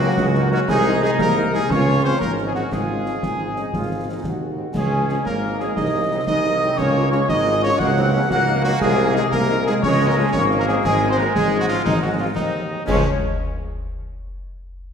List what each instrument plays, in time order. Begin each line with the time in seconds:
Already playing: euphonium F#3, woodwind section F#4, cornet F#4, flute section F#5
0.01 french horn section F#3 A#3 D#4, trombone section A#3
0.17 tuba C#2, trombone section G#3, concert bass drum, snare
0.35 french horn section F#3 A#3 D#4, trombone section A#3, snare
0.50 euphonium F#3, french horn section F#3 A#3 D#4, trombone section C#4, woodwind section F#4, cornet F#4, flute section F#5, snare
0.67 tuba C2, euphonium G#3, trombone section D#4, woodwind section G#4, cornet G#4, flute section G#5, concert bass drum, snare, crash
0.87 french horn section D#3 G#3 D#4
1.01 french horn section D#3 G#3 D#4, euphonium G#3, woodwind section G#4, cornet G#4, flute section G#5, snare
1.19 tuba C2, euphonium A#3, woodwind section A#4, cornet A#4, flute section A#5, concert bass drum, snare
1.37 french horn section D#3 G#3 D#4
1.53 french horn section D#3 G#3 D#4, euphonium G#3, woodwind section G#4, cornet G#4, flute section G#5, snare
1.69 tuba C#2, euphonium C#4, trombone section F4, cornet C#5, woodwind section C#5, flute section C#6, concert bass drum, snare
1.87 french horn section F3 G#3 C#4
2.03 french horn section F3 G#3 C#4, euphonium C4, cornet C5, woodwind section C5, flute section C6
2.19 tuba G#1, euphonium A#3, cornet A#4, woodwind section A#4, flute section A#5, concert bass drum, snare
2.24 trombone section C#4
2.38 french horn section F3 G#3 C#4, snare
2.45 euphonium G#3, woodwind section G#4, cornet G#4, flute section G#5
2.54 french horn section F3 G#3 C#4, euphonium F#3, cornet F#4, woodwind section F#4, flute section F#5, snare
2.71 tuba G#1, euphonium G#3, trombone section F4, cornet G#4, woodwind section G#4, flute section G#5, concert bass drum, snare, crash
2.89 french horn section F3 G#3 C#4
3.06 french horn section F3 G#3 C#4, snare
3.23 tuba G#1, trombone section D#4, concert bass drum, snare
3.39 french horn section F3 G#3 C#4
3.56 french horn section F3 G#3 C#4, trombone section D#4, snare
3.73 tuba G#1, trombone section F4, concert bass drum, snare
3.91 french horn section D#3 G#3 C4
4.08 french horn section D#3 G#3 C4, trombone section D#4
4.24 tuba D#2, concert bass drum, snare
4.28 trombone section F#4
4.41 french horn section D#3 G#3 C4
4.58 french horn section D#3 G#3 C4
4.73 tuba C#2, euphonium G#3, trombone section C#4, cornet G#4, woodwind section G#4, flute section G#5, concert bass drum, snare, crash
4.91 french horn section F3 G#3 C#4
5.08 french horn section F3 G#3 C#4, euphonium G#3, woodwind section G#4, cornet G#4, flute section G#5, snare
5.24 tuba G#1, euphonium A#3, trombone section A#3, woodwind section A#4, cornet A#4, flute section A#5, concert bass drum, snare
5.44 french horn section F3 G#3 C#4
5.59 french horn section F3 G#3 C#4, euphonium G#3, cornet G#4, woodwind section G#4, flute section G#5, snare
5.75 tuba C2, trombone section G#3, euphonium D#4, cornet D#5, woodwind section D#5, flute section D#6, concert bass drum, snare
5.94 french horn section F#3 G#3 D#4, trombone section A#3
6.11 french horn section F#3 G#3 D#4, trombone section C4
6.27 tuba C2, trombone section G#3, euphonium D#4, woodwind section D#5, cornet D#5, flute section D#6, concert bass drum, snare
6.45 french horn section F#3 G#3 D#4, trombone section A#3, snare
6.62 french horn section F#3 G#3 D#4, trombone section C4, snare
6.77 tuba C#2, trombone section A#3, euphonium C#4, cornet C#5, woodwind section C#5, flute section C#6, concert bass drum, snare, crash
6.96 french horn section F3 G#3 F4
7.10 french horn section F3 G#3 F4, euphonium C#4, cornet C#5, woodwind section C#5, flute section C#6, snare
7.29 tuba G#1, trombone section G#3, euphonium D#4, woodwind section D#5, cornet D#5, flute section D#6, concert bass drum, snare
7.46 french horn section F3 G#3 F4
7.62 french horn section F3 G#3 F4, euphonium C#4, woodwind section C#5, cornet C#5, flute section C#6, snare
7.79 tuba C#2, trombone section A#3, euphonium F#4, woodwind section F#5, cornet F#5, flute section F#6, concert bass drum, snare
7.95 french horn section F#3 A#3 D#4, trombone section C4
8.12 french horn section F#3 A#3 D#4, trombone section C#4
8.30 tuba C#2, trombone section A#3, euphonium F#4, woodwind section F#5, cornet F#5, flute section F#6, concert bass drum, snare
8.48 french horn section F#3 A#3 D#4, snare
8.62 french horn section F#3 A#3 D#4, euphonium F#3, cornet F#4, woodwind section F#4, flute section F#5, snare
8.79 tuba C2, euphonium G#3, woodwind section G#4, cornet G#4, flute section G#5, concert bass drum, snare, crash
8.98 french horn section D#3 G#3 D#4
9.14 french horn section D#3 G#3 D#4, euphonium G#3, woodwind section G#4, cornet G#4, flute section G#5, snare
9.31 tuba C2, euphonium A#3, woodwind section A#4, cornet A#4, flute section A#5, concert bass drum, snare
9.50 french horn section D#3 G#3 D#4
9.65 french horn section D#3 G#3 D#4, euphonium G#3, woodwind section G#4, cornet G#4, flute section G#5, snare
9.81 tuba C#2, euphonium C#4, woodwind section C#5, cornet C#5, flute section C#6, concert bass drum, snare
9.85 trombone section G#3
10.01 french horn section F3 G#3 C#4
10.07 euphonium A#3, cornet A#4, woodwind section A#4, flute section A#5
10.16 french horn section F3 G#3 C#4, euphonium G#3, woodwind section G#4, cornet G#4, flute section G#5
10.32 tuba G#1, euphonium C#4, woodwind section C#5, cornet C#5, flute section C#6, concert bass drum, snare
10.37 trombone section A#3
10.51 french horn section F3 G#3 C#4, snare
10.58 euphonium A#3, woodwind section A#4, cornet A#4, flute section A#5
10.66 french horn section F3 G#3 C#4, euphonium G#3, woodwind section G#4, cornet G#4, flute section G#5, snare
10.84 tuba G#1, euphonium G#3, trombone section G#3, woodwind section G#4, cornet G#4, flute section G#5, concert bass drum, snare, crash
11.03 french horn section F3 G#3 C#4
11.09 euphonium C4, woodwind section C5, cornet C5, flute section C6
11.17 french horn section F3 G#3 C#4, euphonium A#3, cornet A#4, woodwind section A#4, flute section A#5, snare
11.34 tuba G#1, euphonium G#3, woodwind section G#4, cornet G#4, flute section G#5, concert bass drum, snare
11.54 french horn section F3 G#3 C#4
11.60 euphonium F#3, woodwind section F#4, cornet F#4, flute section F#5
11.68 euphonium F3, french horn section F3 G#3 C#4, woodwind section F4, cornet F4, flute section F5, snare
11.84 tuba G#1, euphonium D#3, cornet D#4, woodwind section D#4, flute section D#5, concert bass drum, snare
12.02 french horn section F#3 G#3 C4, euphonium F#3, cornet F#4, woodwind section F#4, flute section F#5
12.19 euphonium F3, french horn section F#3 G#3 C4, cornet F4, woodwind section F4, flute section F5
12.34 tuba D#2, euphonium D#3, trombone section C4, cornet D#4, woodwind section D#4, flute section D#5, concert bass drum, snare
12.53 french horn section F#3 G#3 C4
12.70 french horn section F#3 G#3 C4
12.86 tuba C#2, french horn section F3 G#3 C#4, trombone section F3 C#4, cornet C#4, euphonium C#4, woodwind section C#5, flute section C#5, concert bass drum, snare, crash